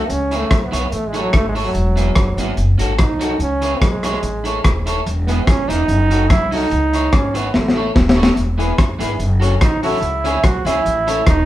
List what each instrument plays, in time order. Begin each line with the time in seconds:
Already playing: trombone A3
0.09 upright bass C#2, trombone C#4, closed hi-hat
0.31 clean electric guitar E4 G#4 C#5, closed hi-hat
0.37 trombone A3
0.50 upright bass B1, muted clean electric guitar stroke, kick, cross-stick, closed hi-hat
0.64 trombone B3
0.71 upright bass B1, clean electric guitar E4 G#4 C#5, closed hi-hat
0.92 upright bass A1, trombone A3, closed hi-hat
1.08 trombone G#3
1.13 clean electric guitar E4 A4 C#5, closed hi-hat
1.21 trombone F#3
1.33 upright bass G#1, trombone A3, kick, cross-stick, closed hi-hat
1.49 trombone G#3
1.55 clean electric guitar E4 A4 C#5, open hi-hat
1.64 trombone F#3
1.74 upright bass E1, closed hi-hat
1.96 clean electric guitar B3 E4 G#4, closed hi-hat
2.15 upright bass F#1, muted clean electric guitar stroke, kick, cross-stick, closed hi-hat
2.37 upright bass G#1, clean electric guitar B3 E4 G#4, closed hi-hat
2.57 upright bass F#1, closed hi-hat
2.78 upright bass G#1, clean electric guitar C#4 F#4 A4, closed hi-hat
2.99 upright bass C2, trombone D#4, kick, cross-stick, closed hi-hat
3.19 clean electric guitar C#4 F#4 A4, closed hi-hat
3.39 upright bass C#2, trombone C#4, closed hi-hat
3.61 clean electric guitar E4 G#4 C#5, closed hi-hat
3.81 upright bass B1, trombone G#3, muted clean electric guitar stroke, kick, cross-stick, closed hi-hat
4.03 clean electric guitar E4 G#4 C#5, cross-stick, closed hi-hat
4.13 cross-stick
4.23 upright bass A1, closed hi-hat
4.44 clean electric guitar E4 A4 C#5, closed hi-hat
4.64 upright bass D#1, kick, cross-stick, closed hi-hat
4.86 clean electric guitar E4 A4 C#5, closed hi-hat
5.06 upright bass E1, closed hi-hat
5.27 trombone B3, clean electric guitar B3 E4 G#4, closed hi-hat
5.47 upright bass G#1, trombone C#4, muted clean electric guitar stroke, kick, cross-stick, closed hi-hat
5.68 upright bass E1, clean electric guitar B3 E4 G#4, trombone D#4, closed hi-hat
5.88 upright bass F#1, closed hi-hat
6.10 clean electric guitar C#4 F#4 A4, closed hi-hat
6.30 upright bass C2, trombone E4, kick, cross-stick, closed hi-hat
6.51 clean electric guitar C#4 F#4 A4, trombone D#4, open hi-hat
6.71 upright bass C#2, closed hi-hat
6.93 clean electric guitar E4 G#4 C#5, closed hi-hat
7.12 upright bass G#1, trombone C#4, muted clean electric guitar stroke, kick, cross-stick, closed hi-hat
7.34 trombone B3, clean electric guitar E4 G#4 C#5, closed hi-hat
7.54 upright bass A1, trombone A3, snare
7.68 snare
7.76 clean electric guitar E4 A4 C#5
7.96 upright bass D#1, kick, snare
8.09 snare
8.15 clean electric guitar E4 A4 C#5
8.23 snare
8.36 upright bass E1, closed hi-hat
8.58 clean electric guitar B3 E4 G#4, upright piano E4 G#4 B4, closed hi-hat
8.77 upright bass F#1, muted clean electric guitar stroke, kick, cross-stick, closed hi-hat
8.99 upright bass G#1, clean electric guitar B3 E4 G#4, upright piano E4 G#4 B4, closed hi-hat
9.19 upright bass F#1, closed hi-hat
9.40 upright piano C#4 F#4 A4, trombone C#4, clean electric guitar F#4 A4 C#5, closed hi-hat
9.61 upright bass A1, trombone D#4, kick, cross-stick, closed hi-hat
9.83 upright piano C#4 F#4 A4, trombone E4, clean electric guitar F#4 A4 C#5, open hi-hat
10.01 upright bass C#2, closed hi-hat
10.24 upright piano C#4 E4 G#4, clean electric guitar E4 G#4 C#5, closed hi-hat
10.44 upright bass B1, trombone F#4, muted clean electric guitar stroke, kick, cross-stick, closed hi-hat
10.65 upright bass C#2, upright piano C#4 E4 G#4, clean electric guitar E4 G#4 C#5, trombone E4, closed hi-hat
10.85 upright bass A1, closed hi-hat
11.07 upright piano C#4 E4 A4, clean electric guitar E4 A4 C#5, closed hi-hat
11.27 upright bass D#1, trombone D#4, kick, cross-stick, closed hi-hat